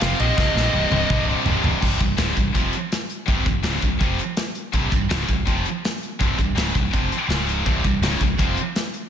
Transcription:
Already playing: F5
0.01 F1 F2 C3 F3, snare, ride
0.19 A#1 F2 C3 F3 D#5, ride
0.36 C1 C2 G2 C3, kick, snare
0.55 A#1 C2 G2 C3, snare
0.73 C1 C2 G2 C3
0.90 C1 C2 G2 C3, high tom
1.09 C1 C2 G2 C3, kick, mid tom
1.27 C2 G2 C3
1.45 C1 C2 G2 C3, floor tom
1.63 C1 C2 G2 C3, floor tom
1.81 C1 C2 G2 C3, kick, crash
1.99 C1 C2 G2, kick, closed hi-hat
2.17 C#1 C#2 G#2 C#3, snare, closed hi-hat
2.36 C1 C2 G2, kick, closed hi-hat
2.54 F1 F2 C3 F3, kick, closed hi-hat
2.73 closed hi-hat
2.92 snare, closed hi-hat
3.10 closed hi-hat
3.26 C1 C2 G2 C3, kick, closed hi-hat
3.44 C1 C2 G2, kick, closed hi-hat
3.63 C#1 C#2 G#2 C#3, snare, closed hi-hat
3.81 C1 C2 G2, kick, closed hi-hat
3.99 F1 F2 C3 F3, kick, closed hi-hat
4.19 closed hi-hat
4.37 snare, closed hi-hat
4.55 closed hi-hat
4.73 C1 C2 G2 C3, kick, closed hi-hat
4.91 C1 C2 G2, kick, closed hi-hat
5.09 C#1 C#2 G#2 C#3, snare, closed hi-hat
5.27 C1 C2 G2, kick, closed hi-hat
5.45 F1 F2 C3 F3, kick, closed hi-hat
5.65 closed hi-hat
5.85 snare, closed hi-hat
6.03 closed hi-hat
6.19 C1 C2 G2 C3, kick, closed hi-hat
6.38 C1 C2 G2, kick, closed hi-hat
6.55 C#1 C#2 G#2 C#3, snare, closed hi-hat
6.75 C1 C2 G2, kick, closed hi-hat
6.93 F1 F2 C3 F3, kick, closed hi-hat
7.12 closed hi-hat
7.28 C#1 C#2 G#2 C#3, snare, closed hi-hat
7.49 closed hi-hat
7.65 C1 C2 G2 C3, kick, closed hi-hat
7.84 C1 C2 G2, kick, closed hi-hat
8.01 C#1 C#2 G#2 C#3, snare, closed hi-hat
8.20 C1 C2 G2, kick, closed hi-hat
8.39 F1 F2 C3 F3, kick, closed hi-hat
8.57 closed hi-hat
8.76 snare, closed hi-hat
8.94 closed hi-hat

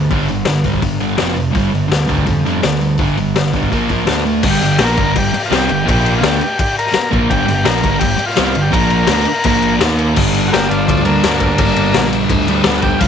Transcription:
0.11 G1 G2 D3 G3, kick, open hi-hat
0.28 G2 D3, open hi-hat
0.45 G1 G2 D3, snare, open hi-hat
0.64 G1 G2 D3 G3, kick, open hi-hat
0.74 kick
0.82 G1 G2 D3, kick, open hi-hat
1.00 G2 D3 G3, open hi-hat
1.16 F2 C3 F3, snare, open hi-hat
1.21 F1
1.34 F2 C3, open hi-hat
1.51 G2 D3 G3, open hi-hat
1.55 G1, kick
1.71 G2 D3, open hi-hat
1.88 D2 G2 D3, snare
1.92 open hi-hat
2.06 D2 G2 D3 G3, kick, open hi-hat
2.18 kick
2.26 F2 G2 D3, kick, open hi-hat
2.45 G2 D3 G3, open hi-hat
2.61 D2 G2 D3, snare, open hi-hat
2.80 G2 D3, open hi-hat
2.98 G1 G2 D3 G3, kick, open hi-hat
3.17 G2 D3, open hi-hat
3.36 G1 G2 D3, snare, open hi-hat
3.53 G1 G2 D3 G3, kick, open hi-hat
3.63 kick
3.71 A#1 A#2 F3 A#3, kick, open hi-hat
3.89 A#2 F3 A#3, kick, open hi-hat
4.06 D2 D3 A3 D4, snare, open hi-hat
4.25 D3 A3, open hi-hat
4.43 G1 G2 D3 G3, kick, crash
4.50 G4
4.61 G1 G2 D3, snare, crash
4.79 A#1 A#2 F3 A#3, snare, crash
4.84 A#4
4.97 G1 G2 D3 G3, kick, crash
5.15 G1 G2 D3 G4, kick, crash
5.34 muted distorted electric guitar stroke, crash
5.43 F4, snare
5.51 C2 C3 G3 C4, snare, crash
5.56 G4
5.69 G1 G2 D3, crash
5.85 A#2 F3 A#3, kick, crash
5.89 A#1 G4
6.06 crash
6.18 D3 F4
6.22 D2 A3 D4, snare, crash
6.27 G4
6.41 G4, crash
6.59 G4, kick, crash
6.78 A#4, crash
6.86 snare
6.93 muted distorted electric guitar stroke, muted picked electric bass stroke, snare, crash
7.11 A#1 A#2 F3 A#3, kick, crash
7.30 G1 G2 D3 G3 G4, kick, crash
7.46 G1 G2 D3, snare, crash
7.64 A#1 A#2 F3 A#3 A#4, snare, crash
7.81 G1 G2 D3 G3, kick, crash
7.99 G1 G2 D3 G4, kick, crash
8.17 muted distorted electric guitar stroke, crash
8.26 F4, snare
8.36 C2 C3 G3 C4, snare, crash
8.55 G1 G2 D3, crash
8.62 G4
8.72 A#1 A#2 F3 A#3 A#4, kick, crash
8.90 crash
9.07 D2 D3 A3 D4, snare, crash
9.25 crash
9.44 A#1 A#2 F3 A#3, kick, crash
9.62 crash
9.80 D#2 D#3 A#3 D#4, snare, crash
9.99 crash
10.14 G2 D3, kick, crash
10.18 G1 G3
10.34 ride
10.48 F#4
10.52 G1 A#3 G4, snare, ride
10.69 G1 D4 F4, ride
10.87 D2 F3 D4, kick, ride
11.05 D3 G3 A#3, ride
11.09 G2 D3
11.23 D2 G2 D3, snare, ride
11.28 G3
11.40 kick, ride
11.58 G1 G2 D3, kick, ride
11.65 G3
11.76 G1, ride
11.94 A#1, snare, ride
12.13 ride
12.29 D2, kick, ride
12.48 D3 G3, ride
12.53 G2
12.64 D2 G2 D3, snare, ride
12.69 G3
12.78 F#4
12.82 G4, kick, ride
12.99 G1 G2 F4, kick, crash
13.03 D3

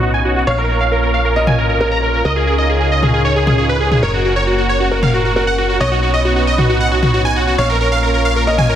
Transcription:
Already playing: B1 B3 C#4 D#4 C#5
0.03 F#4
0.14 G#5
0.25 F#4
0.36 F#4
0.47 A#1 A#3 F4 C#5 F5
0.58 A#4
0.69 A#4
0.80 F5
0.92 A#4
1.03 A#4
1.14 F5
1.25 A#4
1.36 A#4 D#5
1.47 G#5, mid tom
1.58 A#4
1.69 A#4
1.80 A#4
1.91 A#5
2.03 A#4
2.14 A#4
2.25 C#2 C#3 D#4 G#4 A#4 D#5
2.36 G#4
2.47 G#4
2.58 D#5
2.69 G#4
2.81 G#4
2.91 D#5
3.03 G#4, mid tom
3.14 G#4
3.25 C#5
3.36 G#4
3.47 G#4, mid tom
3.58 G#4
3.69 B4
3.80 G#4
3.91 G#4, mid tom
4.03 F#1 A#3 F#4 A#4 C#5
4.14 F#4
4.25 F#4
4.36 C#5
4.47 F#4
4.58 F#4
4.69 C#5
4.80 F#4
4.91 F#4 A#4
5.03 F5, mid tom
5.14 F#4
5.25 F#4
5.36 F#4 A#4
5.47 F#5
5.58 F#4
5.69 F#4
5.80 B1 B3 D#4 C#5 D#5
5.91 F#4
6.03 F#4
6.14 D#5
6.25 F#4
6.36 F#4
6.47 D#5
6.58 F#4, mid tom
6.69 F#4
6.80 F#5
6.92 F#4
7.03 F#4, mid tom
7.14 F#4
7.25 G#5
7.36 F#4
7.47 F#4
7.58 A#1 A#3 C#4 F4 C#5 F5
7.69 A#4
7.80 A#4
7.92 F5
8.03 A#4
8.14 A#4
8.25 F5
8.36 A#4
8.47 A#4 D#5
8.58 G#5, mid tom
8.69 A#4

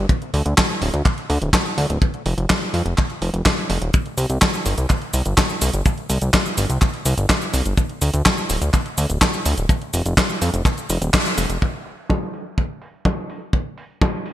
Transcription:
0.09 kick, closed hi-hat
0.22 closed hi-hat
0.34 D2, open hi-hat
0.46 D2, closed hi-hat
0.58 kick, snare, clap, closed hi-hat
0.70 closed hi-hat
0.82 D1, open hi-hat
0.94 D2, closed hi-hat
1.05 kick, clap, closed hi-hat
1.18 closed hi-hat
1.30 D2, open hi-hat
1.42 D1, closed hi-hat
1.53 kick, snare, clap, closed hi-hat
1.66 closed hi-hat
1.78 D2, open hi-hat
1.90 D1, closed hi-hat
2.02 kick, closed hi-hat
2.14 closed hi-hat
2.26 F1, open hi-hat
2.38 F1, closed hi-hat
2.50 kick, snare, clap, closed hi-hat
2.62 closed hi-hat
2.74 F2, open hi-hat
2.86 F1, closed hi-hat
2.98 kick, clap, closed hi-hat
3.10 closed hi-hat
3.22 F1, open hi-hat
3.34 F1, closed hi-hat
3.46 kick, snare, clap, closed hi-hat
3.58 closed hi-hat
3.70 F1, open hi-hat
3.82 D#1, closed hi-hat
3.94 kick, closed hi-hat, cabasa
4.06 closed hi-hat
4.18 C2, open hi-hat, cabasa
4.30 C2, closed hi-hat, cabasa
4.42 kick, snare, clap, closed hi-hat, cabasa
4.54 closed hi-hat, cabasa
4.66 G1, open hi-hat, cabasa
4.78 C2, closed hi-hat, cabasa
4.90 kick, clap, closed hi-hat, cabasa
5.02 closed hi-hat
5.13 C2, open hi-hat, cabasa
5.26 G1, closed hi-hat, cabasa
5.38 kick, snare, clap, closed hi-hat, cabasa
5.50 closed hi-hat, cabasa
5.62 C2, open hi-hat, cabasa
5.74 G1, closed hi-hat, cabasa
5.86 kick, closed hi-hat, cabasa
5.98 closed hi-hat
6.10 C2, open hi-hat, cabasa
6.22 C2, closed hi-hat, cabasa
6.34 kick, snare, clap, closed hi-hat, cabasa
6.46 closed hi-hat, cabasa
6.58 G1, open hi-hat, cabasa
6.70 C2, closed hi-hat, cabasa
6.82 kick, clap, closed hi-hat, cabasa
6.94 closed hi-hat
7.06 C2, open hi-hat, cabasa
7.18 G1, closed hi-hat, cabasa
7.30 kick, snare, clap, closed hi-hat, cabasa
7.42 closed hi-hat, cabasa
7.54 C2, open hi-hat, cabasa
7.66 G1, closed hi-hat, cabasa
7.77 kick, closed hi-hat, cabasa
7.89 closed hi-hat
8.02 D2, open hi-hat, cabasa
8.14 D2, closed hi-hat, cabasa
8.26 kick, snare, clap, closed hi-hat, cabasa
8.38 closed hi-hat, cabasa
8.50 D1, open hi-hat, cabasa
8.62 D2, closed hi-hat, cabasa
8.74 kick, clap, closed hi-hat, cabasa
8.86 closed hi-hat
8.98 D2, open hi-hat, cabasa
9.10 D1, closed hi-hat, cabasa
9.21 kick, snare, clap, closed hi-hat, cabasa
9.34 closed hi-hat, cabasa
9.46 D2, open hi-hat, cabasa
9.58 D1, closed hi-hat, cabasa
9.69 kick, closed hi-hat, cabasa
9.82 closed hi-hat
9.94 F1, open hi-hat, cabasa
10.06 F1, closed hi-hat, cabasa
10.17 kick, snare, clap, closed hi-hat, cabasa
10.30 closed hi-hat, cabasa
10.42 F2, open hi-hat, cabasa
10.54 F1, closed hi-hat, cabasa
10.65 kick, clap, closed hi-hat, cabasa
10.78 closed hi-hat, cabasa
10.90 F1, open hi-hat, cabasa
11.02 D#1, closed hi-hat, cabasa
11.14 kick, snare, clap, open hi-hat, cabasa
11.26 closed hi-hat, cabasa
11.38 F1, open hi-hat, cabasa
11.50 F1, closed hi-hat, cabasa
11.62 kick, crash
11.86 open hi-hat
12.10 kick, snare
12.34 open hi-hat
12.58 kick
12.82 open hi-hat
13.05 kick, snare
13.30 open hi-hat
13.53 kick
13.78 open hi-hat
14.02 kick, snare
14.26 open hi-hat

